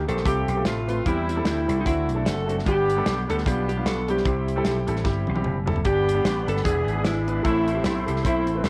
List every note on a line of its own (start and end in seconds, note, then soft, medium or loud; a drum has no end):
0.07 0.23 A#1 medium
0.07 0.19 A#3 medium
0.07 0.19 D#4 medium
0.07 0.19 G4 medium
0.07 0.26 A4 loud
0.07 0.19 C5 medium
0.07 closed hi-hat medium
0.17 snare soft
0.24 0.45 C2 medium
0.24 0.84 C3 medium
0.24 0.47 A3 medium
0.24 0.47 C4 medium
0.24 0.65 C4 medium
0.24 0.47 F4 medium
0.24 0.63 G4 medium
0.24 0.48 A4 medium
0.24 kick medium
0.24 closed hi-hat loud
0.48 0.63 B1 medium
0.48 closed hi-hat medium
0.56 0.75 A3 medium
0.56 0.75 C4 medium
0.56 0.76 F4 medium
0.56 0.76 A4 medium
0.65 1.00 A1 medium
0.65 1.04 A3 medium
0.65 1.03 C4 medium
0.65 0.89 F4 medium
0.65 1.06 F4 medium
0.65 snare loud
0.65 closed hi-hat medium
0.87 0.99 A3 medium
0.87 0.99 C4 medium
0.87 0.99 F4 medium
0.87 1.05 F4 medium
0.87 0.99 B4 medium
0.87 closed hi-hat medium
1.06 1.40 E2 medium
1.06 1.65 E3 medium
1.06 1.28 G3 medium
1.06 1.48 G3 medium
1.06 1.28 C4 medium
1.06 1.48 C4 medium
1.06 1.28 E4 medium
1.06 1.29 E4 medium
1.06 1.47 E4 medium
1.06 1.28 G4 medium
1.06 kick medium
1.06 closed hi-hat medium
1.29 1.45 E4 medium
1.29 closed hi-hat medium
1.36 1.56 G3 medium
1.36 1.56 C4 medium
1.36 1.56 E4 medium
1.36 1.56 A4 medium
1.45 1.65 D2 medium
1.45 1.85 G3 medium
1.45 1.78 E4 medium
1.45 snare loud
1.45 closed hi-hat medium
1.50 1.85 C4 medium
1.50 1.85 E4 medium
1.67 1.83 C2 medium
1.67 1.79 G3 medium
1.67 1.79 C4 medium
1.67 1.79 E4 medium
1.67 1.79 A4 medium
1.67 closed hi-hat medium
1.81 2.07 A3 medium
1.81 2.07 C4 medium
1.81 1.86 D#4 medium
1.85 2.10 D2 medium
1.85 2.44 D3 medium
1.85 2.62 A3 medium
1.85 2.27 C4 medium
1.85 2.08 D4 medium
1.85 2.23 E4 medium
1.85 2.08 F#4 medium
1.85 kick medium
1.85 closed hi-hat medium
2.09 2.24 B1 medium
2.09 closed hi-hat soft
2.14 2.35 A3 medium
2.14 2.35 C4 medium
2.14 2.35 D4 medium
2.14 2.36 A4 medium
2.26 2.61 F#1 medium
2.26 2.64 C4 medium
2.26 2.64 F#4 medium
2.26 2.55 A4 medium
2.26 2.58 A4 medium
2.26 snare loud
2.26 closed hi-hat loud
2.46 2.58 A3 medium
2.46 2.59 C4 medium
2.46 2.59 D4 medium
2.46 2.59 F#4 medium
2.46 closed hi-hat medium
2.59 snare soft
2.65 3.00 G1 medium
2.65 3.24 G2 medium
2.65 2.87 G3 medium
2.65 2.88 B3 medium
2.65 3.42 B3 medium
2.65 2.88 D4 medium
2.65 3.42 D4 medium
2.65 2.88 G4 medium
2.65 3.25 G4 loud
2.65 3.25 G4 medium
2.65 kick medium
2.65 closed hi-hat medium
2.90 closed hi-hat medium
2.96 3.16 G3 medium
2.96 3.16 B3 medium
2.96 3.16 D4 medium
2.96 3.17 A4 medium
3.06 3.25 B1 medium
3.06 snare loud
3.06 closed hi-hat medium
3.28 3.44 D2 medium
3.28 3.39 G3 medium
3.28 3.39 B3 medium
3.28 3.40 D4 medium
3.28 3.46 A4 medium
3.28 3.40 A4 medium
3.28 3.35 A4 medium
3.28 closed hi-hat medium
3.38 snare soft
3.46 3.80 B1 medium
3.46 3.67 G3 medium
3.46 3.68 B3 medium
3.46 4.22 B3 medium
3.46 3.68 D4 medium
3.46 4.22 D4 medium
3.46 3.68 F4 medium
3.46 3.69 G4 medium
3.46 3.68 G4 medium
3.46 kick medium
3.46 closed hi-hat loud
3.69 3.86 G4 medium
3.69 3.85 G4 medium
3.69 closed hi-hat medium
3.77 3.96 G3 medium
3.77 3.96 B3 medium
3.77 3.97 D4 medium
3.77 3.97 F4 medium
3.86 4.20 B1 medium
3.86 4.10 A4 medium
3.86 4.09 A4 medium
3.86 snare loud
3.86 closed hi-hat medium
4.08 4.19 G3 medium
4.08 4.20 B3 medium
4.08 5.42 C4 medium
4.08 4.20 D4 medium
4.08 5.42 E4 medium
4.08 5.46 G4 medium
4.08 4.20 G4 medium
4.08 5.42 G4 medium
4.08 closed hi-hat medium
4.17 snare soft
4.25 4.60 C2 loud
4.25 4.84 C3 medium
4.25 4.47 G3 medium
4.25 4.47 C4 medium
4.25 4.48 E4 medium
4.25 4.48 G4 medium
4.25 kick loud
4.25 closed hi-hat medium
4.48 closed hi-hat medium
4.56 4.76 G3 medium
4.56 4.76 C4 medium
4.56 4.76 E4 medium
4.56 4.76 A4 medium
4.65 4.85 B1 medium
4.65 snare loud
4.65 closed hi-hat medium
4.87 5.05 A1 medium
4.87 4.98 G3 medium
4.87 4.99 C4 medium
4.87 4.99 E4 medium
4.87 4.99 A4 medium
4.87 closed hi-hat medium
4.96 snare soft
5.04 5.24 G1 medium
5.04 5.27 G3 medium
5.04 5.27 C4 medium
5.04 5.27 E4 medium
5.04 5.27 G4 medium
5.04 kick loud
5.04 snare soft
5.27 5.43 B1 medium
5.27 high tom medium
5.35 5.55 G3 medium
5.35 5.55 C4 medium
5.35 5.56 E4 medium
5.35 5.56 G4 medium
5.35 high tom medium
5.44 5.79 F#1 medium
5.44 mid tom medium
5.66 5.78 G3 medium
5.66 5.78 C4 medium
5.66 5.78 E4 medium
5.66 5.79 A4 medium
5.66 floor tom medium
5.76 floor tom medium
5.84 6.19 G1 medium
5.84 6.44 G2 medium
5.84 6.07 G3 medium
5.84 6.07 B3 medium
5.84 6.61 B3 medium
5.84 6.07 D4 medium
5.84 6.61 D4 medium
5.84 6.07 G4 medium
5.84 6.44 G4 loud
5.84 6.65 G4 medium
5.84 6.45 G4 medium
5.84 6.64 B4 medium
5.84 7.43 D5 medium
5.84 6.64 B5 medium
5.84 kick medium
5.84 closed hi-hat medium
6.09 closed hi-hat medium
6.14 6.35 G3 medium
6.14 6.35 B3 medium
6.14 6.35 D4 medium
6.14 6.36 G4 medium
6.25 6.44 A1 medium
6.25 snare loud
6.25 closed hi-hat medium
6.46 6.62 G1 medium
6.46 6.58 G3 medium
6.46 6.59 B3 medium
6.46 6.59 D4 medium
6.46 6.59 A4 medium
6.46 6.64 A4 medium
6.46 6.66 A4 medium
6.46 closed hi-hat medium
6.57 snare soft
6.63 6.84 E1 medium
6.63 7.23 E3 medium
6.63 6.86 B3 medium
6.63 7.04 B3 medium
6.63 6.86 D4 medium
6.63 7.41 D4 medium
6.63 6.87 E4 medium
6.63 7.05 G#4 loud
6.63 6.87 G#4 medium
6.63 7.44 G#4 medium
6.63 7.07 G#4 medium
6.63 8.69 E5 medium
6.63 7.44 B5 medium
6.63 kick medium
6.63 closed hi-hat medium
6.87 7.02 G#1 medium
6.87 closed hi-hat soft
6.93 7.14 B3 medium
6.93 7.14 D4 medium
6.93 7.15 E4 soft
6.93 7.15 G#4 medium
7.04 7.39 G#1 medium
7.04 7.42 G#3 medium
7.04 7.42 B3 medium
7.04 7.44 E4 medium
7.04 7.43 E4 medium
7.04 snare loud
7.04 closed hi-hat medium
7.27 7.39 B3 medium
7.27 7.39 D4 medium
7.27 7.39 E4 medium
7.27 7.39 B4 medium
7.27 closed hi-hat medium
7.43 7.79 A1 medium
7.43 8.02 A2 medium
7.43 7.66 A3 medium
7.43 7.84 A3 medium
7.43 7.66 C4 medium
7.43 7.85 C4 medium
7.43 7.66 E4 medium
7.43 7.82 E4 loud
7.43 7.85 E4 medium
7.43 7.66 A4 medium
7.43 8.69 A4 medium
7.43 8.69 C5 medium
7.43 kick medium
7.43 closed hi-hat medium
7.68 closed hi-hat medium
7.74 7.94 A3 medium
7.74 7.95 C4 medium
7.74 7.95 E4 medium
7.74 7.95 G4 medium
7.84 8.04 B1 medium
7.84 8.25 A3 medium
7.84 8.26 C4 medium
7.84 8.22 E4 medium
7.84 8.26 E4 medium
7.84 snare loud
7.84 closed hi-hat medium
8.06 8.22 C2 medium
8.06 8.18 A3 medium
8.06 8.18 C4 medium
8.06 8.18 E4 medium
8.06 8.19 G4 medium
8.06 closed hi-hat medium
8.16 snare soft
8.23 8.48 B1 medium
8.23 8.46 A3 medium
8.23 8.69 A3 medium
8.23 8.46 C4 medium
8.23 8.66 C4 medium
8.23 8.47 E4 medium
8.23 8.67 E4 medium
8.23 8.63 E4 medium
8.23 8.47 C5 medium
8.23 kick medium
8.23 closed hi-hat medium
8.47 8.62 A1 medium
8.47 closed hi-hat medium
8.55 8.69 A3 medium
8.55 8.69 C4 medium
8.55 8.69 E4 medium
8.55 8.69 B4 medium
8.64 8.69 C2 medium
8.64 8.69 A4 medium
8.64 snare loud
8.64 closed hi-hat medium